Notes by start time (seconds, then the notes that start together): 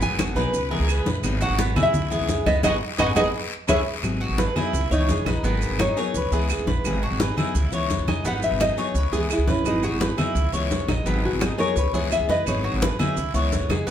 Already playing: D#3 F#3 B3 D#4 G#4
0.02 G#5, maracas
0.09 G#1
0.18 F#3 B3 D#4 F#4 G#4, high conga, short guiro, claves, maracas
0.35 B1 F#3 B3 D#4 G#4 A#4 B4, high conga, short guiro, maracas
0.53 C#2 B4, muted steel-string acoustic guitar stroke, high conga, long guiro, maracas
0.71 E3 G#3 B3 E4 G#4 A#4, high conga
0.79 C#2
0.88 E3 G#3 B3 E4 B4, high conga, short guiro, claves, maracas
1.05 A#1, high conga, short guiro, maracas
1.23 G#1 D#3 F#3 B3 D#4 G#4, high conga, long guiro, claves, maracas
1.41 F#4 F#5, high conga, maracas
1.49 G#1
1.58 F#3 B3 D#4 G#4, high conga, short guiro, maracas
1.75 C2 F#3 B3 D#4 E4 G#4, low conga, short guiro, claves, maracas
1.83 E5
1.93 C#2, muted steel-string acoustic guitar stroke, high conga, low conga, long guiro, maracas
2.11 E3 G#3 B3 E4 G#4, high conga, maracas
2.19 C#2
2.28 E3 G#3 B3 E4, high conga, short guiro, maracas
2.46 C#2 B3 D#5, high conga, short guiro, claves, maracas
2.63 G#1 G#3 B3 D#4 F#4 G#4 B4 D#5 F#5 G#5, high conga, long guiro, claves, maracas
2.98 G#1 G#3 B3 D#4 F#4 G#4 B4 D#5 F#5 G#5, high conga, long guiro, claves, maracas
3.15 G#1 G#3 B3 D#4 F#4 G#4 B4 D#5 F#5 G#5, high conga, long guiro, claves, maracas
3.68 C#2 G#3 B3 C#4 E4 G#4 B4 C#5 E5 G#5, high conga, long guiro, claves, maracas
4.03 G#1 D#3 F#3 B3 D#4 G#4, high conga, long guiro, claves, maracas
4.21 F#4, high conga
4.29 G#1
4.38 F#3 B3 D#4 G#4 B4, high conga, short guiro, maracas
4.55 F#3 B3 D#4 E4 G#4, low conga, short guiro, claves, maracas
4.73 C#2, muted steel-string acoustic guitar stroke, high conga, long guiro, maracas
4.91 C#2 E3 G#3 B3 D#4 E4 C#5, high conga, maracas
5.08 E3 G#3 B3 E4 G#4, high conga, short guiro, maracas
5.17 C#2
5.26 A#1 D#4 B4, high conga, short guiro, claves, maracas
5.43 G#1 D#3 F#3 B3 D#4 G#4 A#4, high conga, long guiro, maracas
5.62 high conga, maracas
5.70 G#1
5.79 F#3 B3 D#4 G#4 C#5, high conga, short guiro, claves, maracas
5.97 F#3 B3 D#4 G#4 A#4 C#5, high conga, short guiro, maracas
6.14 C#2 B4, muted steel-string acoustic guitar stroke, high conga, long guiro, maracas
6.31 C#2 E3 G#3 B3 E4 G#4, high conga, maracas
6.49 E3 G#3 B3 E4, high conga, short guiro, claves, maracas
6.58 C#2
6.66 A#1 B4, high conga, short guiro, maracas
6.84 G#1 D#3 F#3 B3 D#4 G#4, high conga, long guiro, claves, maracas
7.03 F#4, high conga
7.11 G#1
7.20 F#3 B3 D#4 G#4 B4, high conga, short guiro, maracas
7.37 F#3 B3 D#4 E4 G#4, low conga, short guiro, claves, maracas
7.55 C#2, muted steel-string acoustic guitar stroke, high conga, long guiro, maracas
7.72 C#2 E3 G#3 B3 E4 C#5, high conga, maracas
7.89 E3 G#3 B3 E4, high conga, short guiro, maracas
7.99 C#2
8.07 C#3 D#4 G#5, high conga, short guiro, claves, maracas
8.24 G#1 D#3 F#3 B3 D#4 G#4 F#5, high conga, long guiro, maracas
8.43 E5, high conga, maracas
8.51 G#1
8.60 F#3 B3 D#4 G#4 D#5, high conga, short guiro, claves, maracas
8.77 F#3 B3 D#4 G#4 C#5, high conga, short guiro, maracas
8.94 C#2 B4, muted steel-string acoustic guitar stroke, high conga, long guiro, maracas
9.12 C#2 E3 G#3 B3 E4 G#4, high conga, maracas
9.30 E3 G#3 B3 E4, high conga, short guiro, claves, maracas
9.38 C#2
9.47 A#1 C#4 B4, high conga, short guiro, maracas
9.64 G#1 D#3 F#3 B3 D#4 G#4, high conga, long guiro, claves, maracas
9.83 F#4 G#4, high conga, maracas
9.91 G#1
10.00 F#3 B3 D#4 G#4 B4, high conga, short guiro, maracas
10.17 F#3 B3 D#4 E4 G#4, low conga, short guiro, claves, maracas
10.35 C#2, muted steel-string acoustic guitar stroke, high conga, long guiro, maracas
10.53 C#2 E3 G#3 B3 E4 C#5, high conga, maracas
10.70 E3 G#3 B3 E4, high conga, short guiro, maracas
10.79 C#2
10.88 A#1 D#4, high conga, short guiro, claves, maracas
11.05 G#1 D#3 F#3 B3 D#4 G#4, high conga, long guiro, maracas
11.24 F#4, high conga
11.32 G#1
11.41 F#3 B3 D#4 G#4, high conga, short guiro, claves, maracas
11.58 F#3 B3 D#4 G#4 A#4 C#5, high conga, short guiro, maracas
11.76 C#2 B4, muted steel-string acoustic guitar stroke, high conga, long guiro, maracas
11.93 C#2 E3 G#3 B3 E4 G#4 C#5, high conga, maracas
12.11 E3 G#3 B3 E4 E5, high conga, short guiro, claves, maracas
12.19 C#2
12.28 C#3 B4 D#5, high conga, short guiro, maracas
12.46 G#1 D#3 F#3 B3 D#4 G#4 C#5, high conga, long guiro, claves, maracas
12.64 F#4, high conga
12.72 G#1
12.81 F#3 B3 D#4 G#4 B4, high conga, short guiro, maracas
12.99 F#3 B3 D#4 E4 G#4, low conga, short guiro, claves, maracas
13.17 C#2, muted steel-string acoustic guitar stroke, high conga, long guiro, maracas
13.34 C#2 E3 G#3 B3 E4 C#5, high conga, maracas
13.52 E3 G#3 B3 E4, high conga, short guiro, maracas
13.60 C#2
13.69 C#3 D#4 G#4, high conga, short guiro, claves, maracas
13.87 G#1 D#3 B3, long guiro